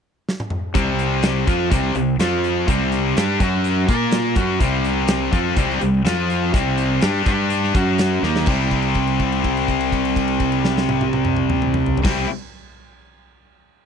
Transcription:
0.29 snare
0.40 high tom
0.50 mid tom
0.74 C2 C3 G3 C4, kick, closed hi-hat
0.99 closed hi-hat
1.23 snare, closed hi-hat
1.47 F2 F3 C4 F4, kick, closed hi-hat
1.70 C2 C3 G3 C4, kick, closed hi-hat
1.95 C2 C3 G3, closed hi-hat
2.20 F2 F3 C4 F4, snare, closed hi-hat
2.44 closed hi-hat
2.67 C2 C3 G3 C4, kick, closed hi-hat
2.92 closed hi-hat
3.17 G2 G3 D4 G4, snare, closed hi-hat
3.40 F#2 F#3 C#4 F#4, kick, snare, closed hi-hat
3.64 closed hi-hat
3.89 A#2 A#3 F4 A#4, kick, closed hi-hat
4.11 snare, closed hi-hat
4.36 F#2 F#3 C#4 F#4, kick, closed hi-hat
4.60 C2 C3 G3 C4, kick, closed hi-hat
4.85 closed hi-hat
5.08 snare, closed hi-hat
5.32 F2 F3 C4 F4, kick, closed hi-hat
5.56 C2 C3 G3 C4, kick, closed hi-hat
5.70 snare
5.80 C2 C3 G3, closed hi-hat
6.05 F2 F3 C4 F4, snare, closed hi-hat
6.30 closed hi-hat
6.53 C2 C3 G3 C4, kick, closed hi-hat
6.78 closed hi-hat
7.01 G2 G3 D4 G4, snare, closed hi-hat
7.15 snare
7.26 G2 G3 D4 G4, kick, closed hi-hat
7.50 closed hi-hat
7.64 snare
7.74 F#2 F#3 C#4 F#4, kick, closed hi-hat
7.98 snare, closed hi-hat
8.23 D#2 D#3 A#3 D#4, snare
8.36 snare
8.46 C2 C3 G3 C4, kick, crash
8.52 E4
8.71 kick, crash
8.82 crash
8.95 kick, crash
9.07 crash
9.19 kick, crash
9.32 crash
9.44 kick, crash
9.57 crash
9.68 kick, crash
9.81 crash
9.92 kick, crash
10.05 crash
10.16 kick, crash
10.28 crash
10.40 kick, crash
10.52 crash
10.65 snare
10.78 snare
10.89 high tom
11.01 high tom
11.13 high tom
11.25 mid tom
11.37 mid tom
11.50 mid tom
11.62 mid tom
11.74 mid tom
11.86 floor tom
11.97 floor tom
12.04 C2 C3 G3 C4 E4, kick, snare, crash

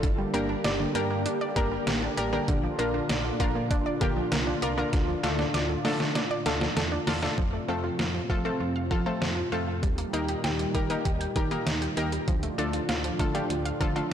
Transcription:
0.03 G1 D3 G3 A#3 D4 G4, kick, closed hi-hat
0.18 G3
0.34 G1 A#3 D4 G4 A#4, closed hi-hat
0.49 D4
0.64 G1 D5, snare, closed hi-hat
0.80 D3
0.95 G2 G3 A#3 D4 G4 A#4, closed hi-hat
1.10 A#3
1.26 D4, closed hi-hat
1.41 D5
1.56 G1 D3 A#3 D4 G4 A#4, kick, closed hi-hat
1.72 G3
1.87 A1 A#3, snare, closed hi-hat
2.02 D4
2.17 A1 G4 A#4 D5, closed hi-hat
2.33 D3 A#3 D4 G4 A#4
2.48 A#1 A#2 D3 F4, kick, closed hi-hat
2.63 F3
2.79 A#1 A#3 D4 F4 A#4, closed hi-hat
2.94 D4
3.09 A#1 D5, snare, closed hi-hat
3.25 D3
3.40 A#2 F3 A#3 D4 F4 A#4, kick, closed hi-hat
3.55 A#3
3.71 D4, kick, closed hi-hat
3.86 D5
4.01 A#1 D3 A#3 D4 F4 G4, kick, closed hi-hat
4.17 F3
4.32 C2 A#3, snare, closed hi-hat
4.47 D4
4.62 C2 F4 A#4 D5, closed hi-hat
4.78 D3 A#3 D4 F4 A#4
4.93 D2 A2 D3, kick, snare, closed hi-hat
5.08 F3
5.23 D2 A3 D4 F4 A4, snare, closed hi-hat
5.39 D4, snare
5.54 D2 D5, snare, closed hi-hat
5.70 D3
5.85 D3 F3 A3 D4 F4 A4, snare, open hi-hat
6.00 A3, snare
6.15 D4, snare, closed hi-hat
6.31 D5
6.46 D2 D3 A3 D4 F4 A4, snare, closed hi-hat
6.61 F3, snare
6.76 E2 A3, snare, closed hi-hat
6.92 D4
7.07 E2 F4 A4 D5, snare, open hi-hat
7.22 D3 A3 D4 F4 A4, snare
7.38 F2 A2 C3 F3 C4 F4, kick
7.53 A3
7.68 F2 A3 C4 F4 A4
7.84 F4
7.99 F2 F5, snare
8.14 F3
8.30 F3 A3 F4 A4, kick
8.45 A3 C4 F4 A4
8.60 F2 F4
8.76 F5
8.91 F3 F4 A4, kick
9.06 A3 C4 F4 A4
9.22 F2 C4, snare
9.37 F4
9.52 F2 A3 C4 F4 A4 F5
9.68 F3
9.83 D#2 A#2 D#3 G3 D#4 G4, kick, closed hi-hat
9.98 A#3, closed hi-hat
10.13 D#2 A#3 D#4 G4 A#4, closed hi-hat
10.29 G4, closed hi-hat
10.44 D#2 G5, snare, closed hi-hat
10.59 G3, closed hi-hat
10.75 D#3 A#3 G4 A#4, kick, closed hi-hat
10.90 A#3 D#4 G4 A#4, closed hi-hat
11.05 D#2 G4, kick, closed hi-hat
11.21 G5, closed hi-hat
11.36 D#3 G3 G4 A#4, kick, closed hi-hat
11.51 A#3 D#4 G4 A#4, closed hi-hat
11.66 D#2 D#4, snare, closed hi-hat
11.82 G4, closed hi-hat
11.97 D#2 A#3 D#4 G4 A#4 G5, closed hi-hat
12.12 G3, closed hi-hat
12.28 D2 A2 D3 F3 D4 F4, kick, closed hi-hat
12.43 A3, closed hi-hat
12.58 D2 A3 D4 F4 A4, closed hi-hat
12.73 F4, closed hi-hat
12.89 D2 F5, snare, closed hi-hat
13.04 F3, closed hi-hat
13.19 D3 A3 F4 A4, kick, closed hi-hat
13.35 A3 D4 F4 G4, closed hi-hat
13.50 D2 F4, closed hi-hat
13.65 F5, closed hi-hat
13.80 D3 F3 F4 A4, kick, closed hi-hat
13.96 A3 D4 F4 A4, closed hi-hat

